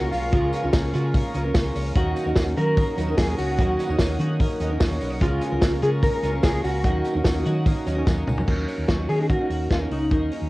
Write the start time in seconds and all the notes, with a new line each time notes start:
Already playing: F3 G#3 A#3 C#4 F4 F#4 G#4 A#4 F5 C#6
0.11 B1 C#4 F4, hi-hat pedal, open hi-hat, tambourine
0.32 C#2 C#3 F3 G#3 C#4 F4 G#4 A#4, kick, hi-hat pedal, open hi-hat
0.53 B3, hi-hat pedal, open hi-hat, tambourine
0.62 C#2 C#4 F4 A#4
0.73 C#2 A#3, kick, snare, hi-hat pedal, open hi-hat, tambourine
0.93 C#3 G#3 C#4 F4 F#4 A#4, hi-hat pedal, open hi-hat
1.04 G#4
1.14 A#3, kick, hi-hat pedal, open hi-hat, tambourine
1.34 C#2 G#3 C#4 F4 A#4, hi-hat pedal, open hi-hat, tambourine
1.44 C#4 F4 A#4
1.54 C#2 G#3 A#3 C#4 F4 A#4, kick, snare, hi-hat pedal, open hi-hat, tambourine
1.75 C#2 C#4, hi-hat pedal, open hi-hat, tambourine
1.95 D#2 D#3 F#3 A#3 C#4 D#4 F#4 A#4 C#5 F#5 D#6, kick, hi-hat pedal, open hi-hat
2.16 C#4, hi-hat pedal, open hi-hat, tambourine
2.25 D#2 C#4 D#4 A#4
2.36 D#2 A#3, kick, snare, hi-hat pedal, open hi-hat, tambourine
2.56 D#3 F#3 C#4 D#4 F#4 A#4, hi-hat pedal, open hi-hat
2.77 A#3, kick, hi-hat pedal, open hi-hat, tambourine
2.96 D#2 F#3 B3 C#4 D#4 A#4, hi-hat pedal, open hi-hat, tambourine
3.07 C#4 D#4 A#4
3.17 D#2 F#3 A#3 C#4 D#4 G#4 A#4, kick, snare, hi-hat pedal, open hi-hat, tambourine
3.38 C#2 C#4 F#4, hi-hat pedal, open hi-hat, tambourine
3.58 D#2 D#3 F#3 A#3 C#4 D#4 F#4 A#4, kick, hi-hat pedal, open hi-hat
3.79 B3, hi-hat pedal, open hi-hat, tambourine
3.89 D#2 C#4 D#4 A#4
3.98 D#2 A#3, kick, snare, hi-hat pedal, open hi-hat, tambourine
4.18 D#3 F#3 C#4 D#4 F#4 A#4, hi-hat pedal, open hi-hat
4.40 A#3, kick, hi-hat pedal, open hi-hat, tambourine
4.60 D#2 F#3 C#4 D#4 A#4, hi-hat pedal, open hi-hat, tambourine
4.70 C#4 D#4 A#4
4.80 F#3 A#3 C#4 D#4 A#4, kick, snare, hi-hat pedal, open hi-hat, tambourine
5.01 B1 B3, hi-hat pedal, open hi-hat, tambourine
5.10 C#4
5.20 C#2 C#3 F3 G#3 C#4 F4 G#4 A#4 F5 C#6, kick, hi-hat pedal, open hi-hat, tambourine
5.41 C#4, hi-hat pedal, open hi-hat, tambourine
5.51 C#2 C#4 F4 A#4
5.62 C#2 A#3, kick, snare, hi-hat pedal, open hi-hat, tambourine
5.82 C#3 G#3 C#4 F4 G#4 A#4, hi-hat pedal, open hi-hat
6.03 A#3 A#4, kick, hi-hat pedal, open hi-hat, tambourine
6.23 C#2 G#3 C#4 F4 A#4, hi-hat pedal, open hi-hat, tambourine
6.33 C#4 F4 A#4
6.43 C#2 G#3 A#3 C#4 F4 G#4 A#4, kick, snare, hi-hat pedal, open hi-hat, tambourine
6.64 C#2 C#4 F#4, hi-hat pedal, open hi-hat, tambourine
6.83 D#2 D#3 F#3 A#3 C#4 D#4 F#4 A#4 C#5 F#5 D#6, kick, hi-hat pedal, open hi-hat, tambourine
7.04 C#4, hi-hat pedal, open hi-hat, tambourine
7.13 D#2 C#4 D#4 A#4
7.24 D#2 A#3, kick, snare, hi-hat pedal, open hi-hat, tambourine
7.44 D#3 F#3 C#4 D#4 F#4 A#4, hi-hat pedal, open hi-hat, tambourine
7.66 A#3, kick, hi-hat pedal, open hi-hat, tambourine
7.85 D#2 F#3 C#4 D#4 A#4, hi-hat pedal, open hi-hat, tambourine
7.95 C#4 D#4 A#4
8.06 D#2 F#3 A#3 C#4 D#4 A#4, kick, snare, tambourine
8.27 C#2 C#4, mid tom, tambourine
8.38 floor tom
8.47 D#2 F#3 A#3 C#4 D#4 A#4, kick, crash
8.68 C#4, open hi-hat
8.78 D#2
8.87 D#2 F#3 C#4 D#4 F#4 A#4, kick, snare, closed hi-hat
9.09 D#3 C#4 G#4, open hi-hat
9.18 C#4 D#4 A#4
9.22 G#4
9.29 A#3 F#4, kick, closed hi-hat
9.38 C#4 D#4 A#4
9.50 D#2 F#4, open hi-hat
9.71 D#2 C#4 F4, kick, snare, closed hi-hat
9.79 C#4 D#4 A#4
9.90 C#2 D#4 F#4, open hi-hat
10.10 D#2 F#3 A#3 C#4 D#4 A#4, kick, closed hi-hat
10.32 C#4, open hi-hat
10.42 D#2